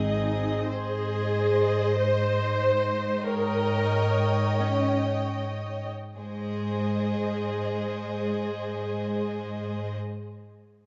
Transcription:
Already playing: double bass section G#1, cello section G#2, viola section C4 D#4, violin section G#4 D#5
0.70 cello section G#2, viola section G#4, violin section C5 D#5
2.00 viola section C5
3.25 viola section A#4, violin section C#5 D#5 G5
4.60 viola section C#4
6.17 cello section G#2, viola section G#3, violin section G#4 C5 D#5

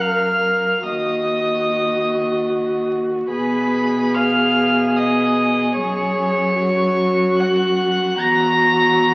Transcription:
Already playing: cello F#2, viola A#4
0.01 violin F5 F6
0.83 cello D#2, viola F#4, violin D#5 D#6
3.29 cello B2, viola G#4, violin B4 B5
4.14 violin F5 F6
4.96 violin D#5 D#6
5.76 cello F#2, violin C#5 C#6
6.55 viola F#4
7.40 violin F#5 F#6
8.19 cello E2, viola F#4, violin A#5 A#6

